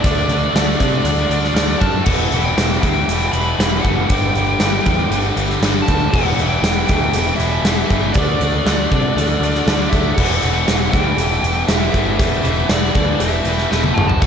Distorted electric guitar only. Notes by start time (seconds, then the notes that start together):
0.04 D3 A3 D4
0.30 D3 A3 D4
0.55 D3 A3 D4
0.80 D3 A3 D4
1.04 D3 A3 D4
1.31 D3 A3 D4
1.56 D3 A3 D4
1.80 D3 A3 D4
2.05 E2 B2 E3
2.33 E2 B2 E3
2.58 E2 B2 E3
2.83 E2 B2 E3
3.10 E2 B2 E3
3.34 E2 B2 E3
3.60 E2 B2 E3
3.85 E2 B2 E3
4.10 G2 D3 G3
4.34 G2 D3 G3
4.60 G2 D3 G3
4.86 G2 D3 G3
5.11 G2 D3 G3
5.36 G2 D3 G3
5.61 G2 D3 G3
5.88 G2 D3 G3
6.12 E2 B2 E3
6.39 E2 B2 E3
6.64 E2 B2 E3
6.89 E2 B2 E3
7.15 E2 B2 E3
7.39 E2 B2 E3
7.65 E2 B2 E3
7.90 E2 B2 E3
8.17 D3 A3 D4
8.42 D3 A3 D4
8.66 D3 A3 D4
8.92 D3 A3 D4
9.17 D3 A3 D4
9.43 D3 A3 D4
9.68 D3 A3 D4
9.93 D3 A3 D4
10.19 E2 B2 E3
10.44 E2 B2 E3
10.69 E2 B2 E3
10.94 E2 B2 E3
11.20 E2 B2 E3
11.45 E2 B2 E3
11.70 E2 B2 E3
11.95 E2 B2 E3
12.20 E2 B2 E3
12.43 E2 B2 E3
12.69 E2 B2 E3
12.95 E2 B2 E3
13.21 E2 B2 E3
13.46 E2 B2 E3
13.71 E2 B2 E3
13.96 E2 B2 E3
14.23 E2 B2 E3